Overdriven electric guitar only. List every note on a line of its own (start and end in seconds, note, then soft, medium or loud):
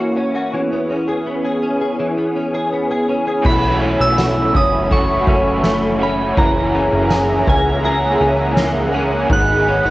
3.43 4.90 B2 medium
3.43 4.89 E3 medium
3.48 4.90 A3 medium
3.48 4.93 C#4 medium
3.48 4.95 F#4 medium
4.89 6.02 E3 medium
4.89 6.01 A3 medium
4.93 6.02 C#4 medium
4.93 5.99 F#4 medium
5.99 6.38 C#4 medium
5.99 6.37 F#4 medium
6.05 6.39 A3 soft
6.35 7.83 F#2 medium
6.35 7.84 C#3 medium
6.40 7.81 E3 medium
6.40 7.84 A#3 medium
6.40 7.85 C#4 medium
6.44 7.88 G#4 medium
7.82 8.93 E3 medium
7.82 8.94 A#3 medium
7.86 8.93 C#4 medium
7.86 8.92 G#4 medium
8.92 9.31 C#4 medium
8.92 9.30 G#4 medium
8.97 9.32 E3 medium
8.97 9.32 A#3 medium
9.28 9.90 G#2 medium
9.28 9.90 D#3 medium
9.32 9.90 F#3 medium
9.32 9.90 B3 medium
9.32 9.90 D#4 medium
9.37 9.90 G#4 medium